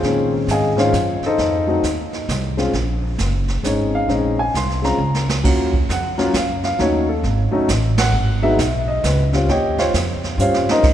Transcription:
0.00 0.46 A#2 medium
0.00 0.71 D#3 soft
0.00 0.72 G#3 soft
0.00 0.30 F4 medium
0.00 0.30 G#4 medium
0.00 0.30 C5 medium
0.00 brush sweep soft
0.00 kick soft
0.00 snare soft
0.04 0.72 C4 soft
0.04 0.72 C#4 medium
0.47 0.91 G#2 medium
0.47 0.78 D#5 medium
0.47 0.78 G#5 medium
0.47 kick soft
0.47 snare soft
0.47 hi-hat pedal soft
0.51 0.78 G#4 medium
0.51 0.78 F5 medium
0.76 0.91 D#3 medium
0.76 0.91 G#3 medium
0.76 0.91 C4 medium
0.76 0.92 C#4 medium
0.76 1.20 F4 medium
0.76 1.20 C5 medium
0.76 1.20 C#5 medium
0.76 1.20 F5 medium
0.76 snare soft
0.93 1.20 F#2 medium
0.93 kick soft
0.93 snare soft
0.93 hi-hat pedal soft
1.21 muted upright bass stroke soft
1.21 snare soft
1.26 1.66 D#4 medium
1.26 1.66 A4 medium
1.26 1.66 C5 medium
1.26 1.66 D#5 medium
1.38 1.82 F2 medium
1.38 brush sweep soft
1.38 kick soft
1.38 snare soft
1.67 1.81 F#3 medium
1.67 1.82 A3 soft
1.67 1.82 C4 medium
1.67 1.82 D#4 medium
1.83 2.27 D#2 medium
1.83 kick soft
1.83 snare soft
1.83 hi-hat pedal soft
2.13 snare soft
2.29 2.72 C2 medium
2.29 kick soft
2.29 snare soft
2.29 hi-hat pedal soft
2.57 2.72 G#3 medium
2.57 2.72 C4 medium
2.57 2.72 C#4 medium
2.57 2.72 F4 medium
2.57 snare soft
2.73 3.17 A#1 medium
2.73 brush sweep soft
2.73 kick soft
2.73 snare soft
3.18 3.62 F#1 medium
3.18 kick soft
3.18 snare soft
3.18 hi-hat pedal soft
3.48 snare soft
3.63 4.07 G#1 medium
3.63 4.06 G#3 soft
3.63 4.07 C4 soft
3.63 4.08 C#4 soft
3.63 4.08 D#4 soft
3.63 3.93 C#5 medium
3.63 kick soft
3.63 snare soft
3.63 hi-hat pedal medium
3.95 4.09 F5 medium
4.08 4.52 A#1 medium
4.08 4.34 G#3 medium
4.08 4.35 C4 soft
4.08 4.35 C#4 soft
4.08 4.35 D#4 medium
4.08 brush sweep soft
4.08 kick soft
4.08 snare soft
4.12 4.38 D#5 medium
4.39 4.54 G#5 medium
4.54 4.98 C2 medium
4.54 4.84 C6 medium
4.54 kick soft
4.54 snare soft
4.54 hi-hat pedal soft
4.70 snare soft
4.82 4.97 G#3 medium
4.82 4.97 C4 soft
4.82 4.98 C#4 soft
4.82 4.98 F4 medium
4.82 5.26 A#5 medium
4.82 snare soft
4.98 5.42 C#2 medium
5.14 snare soft
5.29 snare medium
5.43 5.88 D#2 medium
5.43 5.70 F#3 soft
5.43 5.70 A#3 medium
5.43 5.71 C#4 soft
5.43 5.71 F4 medium
5.43 brush sweep soft
5.43 kick medium
5.43 snare soft
5.43 crash medium
5.74 kick medium
5.89 6.33 F2 medium
5.89 6.32 F#5 medium
5.89 kick soft
5.89 snare soft
5.89 hi-hat pedal soft
6.18 6.32 F#3 medium
6.18 6.32 A#3 medium
6.18 6.33 C#4 medium
6.18 6.33 F4 medium
6.18 snare soft
6.33 6.77 F#2 medium
6.33 6.63 F5 medium
6.33 kick soft
6.33 snare medium
6.33 hi-hat pedal medium
6.63 6.79 F5 medium
6.63 snare soft
6.78 7.22 D#2 medium
6.78 7.05 F#3 medium
6.78 7.05 A3 medium
6.78 7.06 C#4 soft
6.78 7.06 D#4 medium
6.78 7.08 C#5 medium
6.78 brush sweep soft
6.78 kick soft
6.78 snare soft
7.09 7.24 A4 soft
7.23 7.51 G#1 medium
7.23 kick soft
7.23 snare soft
7.51 7.66 F#3 medium
7.51 7.67 A3 medium
7.51 7.67 C#4 medium
7.51 7.67 D#4 medium
7.51 muted upright bass stroke soft
7.68 8.12 A1 medium
7.68 kick soft
7.68 snare medium
7.68 hi-hat pedal medium
7.98 8.40 F#5 loud
7.98 snare medium
7.98 ride medium
8.12 8.57 G#1 medium
8.12 brush sweep soft
8.42 8.57 F#3 medium
8.42 8.57 G#3 medium
8.42 8.58 B3 medium
8.42 8.58 D#4 medium
8.42 8.58 E5 medium
8.58 9.02 B1 medium
8.58 8.88 E5 medium
8.58 kick soft
8.58 snare medium
8.58 hi-hat pedal medium
8.88 9.03 D#5 medium
9.04 9.48 C#2 medium
9.04 9.22 B4 medium
9.04 kick soft
9.04 snare medium
9.04 hi-hat pedal medium
9.33 9.47 G3 medium
9.33 9.47 C4 medium
9.33 9.48 C#4 soft
9.33 9.48 F4 medium
9.33 snare soft
9.49 9.92 D#2 medium
9.49 9.78 G4 medium
9.49 9.78 C#5 medium
9.49 9.78 D#5 medium
9.49 9.78 G5 medium
9.49 brush sweep soft
9.49 kick soft
9.49 snare soft
9.78 9.94 F4 medium
9.78 9.94 C5 medium
9.78 9.94 C#5 medium
9.78 9.94 F5 medium
9.78 snare soft
9.94 10.37 F2 medium
9.94 kick soft
9.94 snare medium
9.94 hi-hat pedal medium
10.24 snare soft
10.38 10.65 G2 medium
10.38 10.84 G3 medium
10.38 10.84 C4 medium
10.38 10.84 C#4 medium
10.38 10.85 F4 medium
10.38 10.69 C#5 medium
10.38 10.69 F5 medium
10.38 hi-hat pedal medium
10.42 10.69 C5 medium
10.54 snare medium
10.67 10.85 A#4 medium
10.67 10.85 D#5 medium
10.67 muted upright bass stroke soft
10.67 snare medium
10.71 10.85 D#4 medium
10.71 10.85 C5 medium
10.83 10.94 G#2 medium
10.83 brush sweep soft
10.83 kick medium
10.83 snare soft
10.83 crash medium

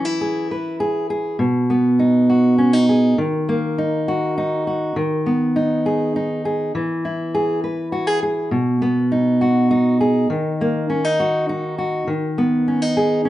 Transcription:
0.00 1.40 E3 medium
0.05 1.39 E4 soft
0.21 0.51 G#4 soft
0.51 0.80 B4 medium
0.80 1.09 G#4 medium
1.10 1.36 G#4 medium
1.39 3.18 B2 medium
1.70 3.15 B3 soft
1.99 2.58 D#4 soft
2.30 2.89 F#4 medium
2.58 2.73 C#4 medium
2.73 3.18 D#4 soft
2.89 3.15 G#4 medium
3.18 4.93 D#3 medium
3.49 4.93 A#3 soft
3.78 4.36 D#4 medium
4.08 4.66 F#4 medium
4.38 4.93 D#4 medium
4.67 4.97 F#4 soft
4.96 6.71 D#3 medium
5.26 8.76 B3 soft
5.56 6.15 D#4 soft
5.86 6.44 G#4 medium
6.16 6.71 D#4 soft
6.45 6.71 G#4 soft
6.75 8.53 E3 medium
7.05 8.49 E4 soft
7.35 7.63 G#4 medium
7.64 7.92 B4 medium
7.92 8.07 F#4 medium
8.07 8.21 G#4 soft
8.23 8.49 G#4 soft
8.51 10.29 B2 medium
8.82 10.27 B3 soft
9.12 9.70 D#4 soft
9.41 10.00 F#4 medium
9.71 10.89 D#4 medium
10.01 10.27 G#4 medium
10.30 12.04 D#3 medium
10.61 12.05 A#3 medium
10.90 11.05 C#4 medium
11.05 11.48 D#4 soft
11.20 11.77 F#4 medium
11.49 12.05 D#4 medium
11.78 12.08 F#4 medium
12.07 13.29 D#3 medium
12.38 13.29 B3 soft
12.68 12.82 C#4 soft
12.82 13.25 D#4 soft
12.97 13.29 G#4 medium
13.25 13.29 C#4 medium

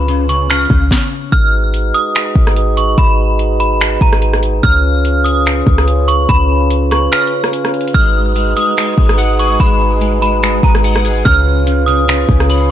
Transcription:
0.00 0.66 C#2 loud
0.00 0.88 C#3 medium
0.00 0.88 C#4 medium
0.00 0.70 F4 medium
0.00 0.88 F4 medium
0.00 0.88 B4 medium
0.00 0.25 B5 loud
0.00 0.50 B5 loud
0.08 0.28 C#3 medium
0.08 closed hi-hat medium
0.29 0.49 C#3 medium
0.29 0.49 C#6 medium
0.29 closed hi-hat medium
0.50 0.69 C#3 loud
0.50 0.89 F6 medium
0.50 finger snap loud
0.50 closed hi-hat soft
0.55 closed hi-hat soft
0.60 closed hi-hat medium
0.65 closed hi-hat medium
0.70 0.90 C#2 loud
0.70 1.32 C#3 medium
0.70 kick loud
0.91 kick loud
0.91 snare medium
1.32 1.92 G#1 loud
1.32 4.60 G#3 medium
1.32 4.60 D#4 medium
1.32 4.60 F#4 medium
1.32 11.21 B4 medium
1.32 1.91 F6 loud
1.32 kick loud
1.32 closed hi-hat medium
1.74 closed hi-hat medium
1.94 2.73 D#6 medium
1.94 closed hi-hat medium
2.15 finger snap loud
2.15 closed hi-hat medium
2.36 2.95 G#1 loud
2.36 kick loud
2.47 cross-stick loud
2.56 closed hi-hat medium
2.77 2.97 C#6 medium
2.77 closed hi-hat medium
2.98 3.97 G#1 loud
2.98 3.56 B5 loud
2.98 kick loud
2.98 closed hi-hat medium
3.39 closed hi-hat medium
3.60 3.99 B5 medium
3.60 closed hi-hat medium
3.81 finger snap loud
3.81 closed hi-hat medium
4.01 4.61 G#1 loud
4.01 4.60 A#5 medium
4.01 kick loud
4.13 cross-stick loud
4.22 closed hi-hat medium
4.33 cross-stick medium
4.43 closed hi-hat medium
4.63 5.63 C#2 loud
4.63 7.91 C#3 medium
4.63 7.91 C#4 medium
4.63 7.91 F4 medium
4.63 5.22 F6 loud
4.63 kick loud
4.63 closed hi-hat medium
5.05 closed hi-hat medium
5.24 6.04 D#6 medium
5.24 closed hi-hat medium
5.46 finger snap loud
5.46 closed hi-hat medium
5.67 6.26 C#2 loud
5.67 kick loud
5.78 cross-stick loud
5.88 closed hi-hat medium
6.08 6.28 C#6 medium
6.08 closed hi-hat medium
6.29 7.08 C#2 loud
6.29 6.87 B5 loud
6.29 kick loud
6.29 closed hi-hat medium
6.71 closed hi-hat medium
6.91 7.11 C#6 medium
6.91 cross-stick loud
6.91 closed hi-hat medium
7.12 7.51 F6 medium
7.12 finger snap loud
7.12 closed hi-hat soft
7.17 closed hi-hat soft
7.22 closed hi-hat medium
7.27 closed hi-hat medium
7.44 cross-stick loud
7.53 closed hi-hat medium
7.65 cross-stick medium
7.74 closed hi-hat soft
7.81 closed hi-hat medium
7.88 closed hi-hat medium
7.94 8.54 G#1 loud
7.94 11.22 G#3 medium
7.94 8.34 G#3 medium
7.94 11.22 D#4 medium
7.94 11.22 F#4 medium
7.94 8.53 F6 loud
7.94 kick loud
7.94 closed hi-hat medium
8.36 8.55 G#3 medium
8.36 closed hi-hat medium
8.56 8.76 G#3 medium
8.56 9.35 D#6 medium
8.56 closed hi-hat medium
8.77 8.96 G#3 medium
8.77 finger snap loud
8.77 closed hi-hat medium
8.97 9.57 G#1 loud
8.97 9.59 G#3 medium
8.97 kick loud
9.09 cross-stick loud
9.18 10.42 F#5 loud
9.18 closed hi-hat medium
9.39 10.63 G#4 medium
9.39 9.59 C#6 medium
9.39 closed hi-hat medium
9.60 10.59 G#1 loud
9.60 10.00 G#3 medium
9.60 10.18 B5 loud
9.60 kick loud
9.60 closed hi-hat medium
10.01 10.21 G#3 medium
10.01 closed hi-hat medium
10.22 10.42 G#3 medium
10.22 10.61 B5 medium
10.22 closed hi-hat medium
10.43 10.62 G#3 medium
10.43 finger snap loud
10.43 closed hi-hat medium
10.63 11.23 G#1 loud
10.63 11.26 G#3 medium
10.63 11.22 A#5 medium
10.63 kick loud
10.75 cross-stick loud
10.84 11.26 F#5 medium
10.84 closed hi-hat medium
10.96 cross-stick loud
11.05 11.25 G#4 medium
11.05 closed hi-hat medium
11.25 12.25 C#2 loud
11.25 12.71 C#3 medium
11.25 11.65 C#3 loud
11.25 12.71 C#4 medium
11.25 12.71 F4 medium
11.25 12.71 B4 medium
11.25 11.84 F6 loud
11.25 kick loud
11.25 closed hi-hat medium
11.66 11.87 C#3 medium
11.66 closed hi-hat medium
11.86 12.07 C#3 medium
11.86 12.66 D#6 medium
11.86 closed hi-hat medium
12.08 12.28 C#3 medium
12.08 finger snap loud
12.08 closed hi-hat medium
12.29 12.71 C#2 loud
12.29 12.71 C#3 medium
12.29 kick loud
12.40 cross-stick loud
12.50 12.71 B5 loud
12.50 closed hi-hat medium

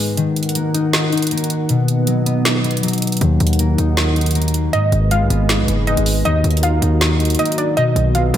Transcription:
0.00 0.23 G#2 medium
0.00 0.16 G#3 medium
0.00 0.23 G#3 loud
0.00 0.61 B3 medium
0.00 0.74 D#4 medium
0.00 0.16 G#4 medium
0.00 0.16 B4 medium
0.00 0.16 D#5 medium
0.17 1.74 D#3 loud
0.17 1.68 D#3 medium
0.17 1.68 D#4 medium
0.17 1.68 A#4 medium
0.17 3.18 F#5 medium
0.17 closed hi-hat medium
0.36 closed hi-hat medium
0.43 closed hi-hat medium
0.49 closed hi-hat medium
0.55 1.31 A#3 medium
0.55 closed hi-hat medium
0.74 1.12 D#4 loud
0.74 closed hi-hat medium
0.93 2.72 D#5 medium
0.93 snare loud
0.93 closed hi-hat medium
1.12 2.45 D#4 medium
1.12 closed hi-hat soft
1.17 closed hi-hat medium
1.22 closed hi-hat medium
1.27 closed hi-hat medium
1.31 1.75 A#3 loud
1.31 closed hi-hat medium
1.38 closed hi-hat medium
1.44 closed hi-hat medium
1.50 closed hi-hat medium
1.69 3.26 B2 medium
1.69 3.20 B3 medium
1.69 3.20 B4 medium
1.69 3.20 D#5 medium
1.69 closed hi-hat medium
1.88 closed hi-hat medium
2.07 2.82 F#3 medium
2.07 closed hi-hat medium
2.26 2.64 B3 medium
2.26 closed hi-hat medium
2.45 3.78 D#4 medium
2.45 snare loud
2.45 closed hi-hat medium
2.64 3.65 B3 medium
2.64 closed hi-hat soft
2.71 closed hi-hat medium
2.77 closed hi-hat medium
2.83 3.26 F#3 medium
2.83 closed hi-hat medium
2.88 closed hi-hat medium
2.93 closed hi-hat medium
2.98 closed hi-hat soft
3.02 closed hi-hat medium
3.02 open hi-hat medium
3.07 closed hi-hat medium
3.12 closed hi-hat medium
3.17 closed hi-hat medium
3.21 3.40 D#2 loud
3.21 4.72 D#3 medium
3.21 4.78 D#3 medium
3.21 4.72 D#4 medium
3.21 4.72 A#4 medium
3.21 4.72 F#5 medium
3.21 closed hi-hat medium
3.40 3.77 D#2 loud
3.40 closed hi-hat medium
3.47 closed hi-hat medium
3.53 closed hi-hat medium
3.59 4.35 A#3 medium
3.59 closed hi-hat medium
3.78 4.69 D#2 loud
3.78 4.16 D#4 medium
3.78 closed hi-hat medium
3.97 5.75 D#5 medium
3.97 snare loud
3.97 closed hi-hat medium
4.16 5.49 D#4 medium
4.16 closed hi-hat soft
4.21 closed hi-hat medium
4.26 closed hi-hat medium
4.31 closed hi-hat medium
4.35 5.36 A#3 medium
4.35 closed hi-hat medium
4.42 closed hi-hat medium
4.48 closed hi-hat medium
4.54 closed hi-hat medium
4.73 6.30 G#2 medium
4.73 6.24 G#3 medium
4.73 6.24 G#4 medium
4.73 6.24 B4 medium
4.73 5.09 D#5 loud
4.73 6.24 D#5 medium
4.73 closed hi-hat medium
4.92 5.23 G#1 loud
4.92 closed hi-hat medium
5.11 5.86 G#3 medium
5.11 5.83 F5 medium
5.11 closed hi-hat medium
5.21 5.30 B1 loud
5.30 5.61 G#1 loud
5.30 5.68 B3 loud
5.30 closed hi-hat medium
5.49 6.81 D#4 medium
5.49 snare loud
5.49 closed hi-hat medium
5.59 5.68 B1 loud
5.68 5.96 F#1 loud
5.68 6.69 B3 medium
5.68 closed hi-hat medium
5.87 6.30 G#3 loud
5.87 6.23 D#5 medium
5.87 closed hi-hat soft
5.97 6.24 G#1 loud
5.97 closed hi-hat medium
6.06 open hi-hat medium
6.25 6.43 D#2 loud
6.25 7.82 D#3 medium
6.25 7.75 D#3 medium
6.25 7.76 D#4 medium
6.25 8.37 F#4 medium
6.25 7.76 A#4 medium
6.25 6.61 D#5 loud
6.25 closed hi-hat medium
6.44 6.81 D#2 loud
6.44 closed hi-hat medium
6.51 closed hi-hat medium
6.57 closed hi-hat medium
6.63 7.39 A#3 medium
6.63 7.35 F5 medium
6.63 closed hi-hat medium
6.82 7.37 D#2 loud
6.82 7.20 D#4 loud
6.82 closed hi-hat medium
7.01 8.37 D#5 medium
7.01 snare loud
7.01 closed hi-hat medium
7.20 8.37 D#4 medium
7.20 closed hi-hat soft
7.25 closed hi-hat medium
7.30 closed hi-hat medium
7.35 closed hi-hat medium
7.39 7.83 A#3 loud
7.39 7.54 D#5 medium
7.39 closed hi-hat medium
7.46 closed hi-hat medium
7.52 closed hi-hat medium
7.58 7.73 D5 medium
7.58 closed hi-hat medium
7.77 8.37 B2 medium
7.77 8.37 B3 medium
7.77 8.37 B4 medium
7.77 8.13 D#5 loud
7.77 8.37 D#5 medium
7.77 closed hi-hat medium
7.96 8.32 B1 loud
7.96 closed hi-hat medium
8.15 8.37 F#3 medium
8.15 8.37 F5 medium
8.15 closed hi-hat medium
8.34 8.37 B2 loud
8.34 8.37 B3 medium
8.34 closed hi-hat medium

